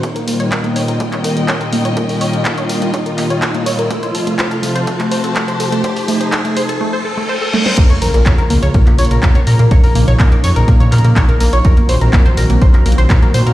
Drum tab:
CC |--------------------------------|--------------------------------|--------------------------------|--------------------------------|
HH |x-x-o-x-x-x-o-x-x-x-o-x-x-x-o-x-|x-o-o-x-x-x-o-x-x-x-o-x-x-x-o-x-|x-x-o-x-x-x-o-x-x-x-o-x-x-x-o-x-|x-o-o-x-x-x-o-x-----------------|
CP |--------x---------x-----x-------|--------x-----------x---x-------|--------x---------x-----x-------|--------x-----------------------|
SD |--------------------------------|--------------------------------|--------------------------------|----------------------------o-o-|
BD |o-------o-------o-------o-------|o-------o-------o-------o-------|o-------o-------o-------o-------|o-------o-----------------------|

CC |x-------------------------------|--------------------------------|--------------------------------|
HH |x-x-o-x-x-x-o-x-x-x-oxx-x-x-o-x-|x-o-o-x-x-x-o-x-x-x-oxx-x-x-o-x-|x-x-o-x-x-x-o-x-x-x-oxx-x-x-o-x-|
CP |--------x---------x-----x-------|--------x-----------x---x-------|--------x---------x-----x-------|
SD |--------------------------------|--------------------------------|--------------------------------|
BD |o-------o-------o-------o-------|o-------o-------o-------o-------|o-------o-------o-------o-------|